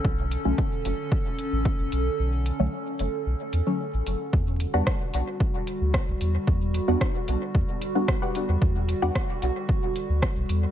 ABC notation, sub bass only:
X:1
M:4/4
L:1/16
Q:1/4=112
K:Em
V:1 name="Sub bass" clef=bass
B,,,2 z B,,, z2 F,,, z4 A,,, z F,,, B,,, z | B,,,2 z B,,, z2 F,,, z B,,, z E,, z2 A,,, F,,, z | E,,2 z E,, z2 B,,, z4 D,, z B,,, E,, z | E,,2 z E,, z2 B,,, z E,, z6 E,, |
E,,2 z E,, z2 B,,, z4 D,, z B,,, E,, z |]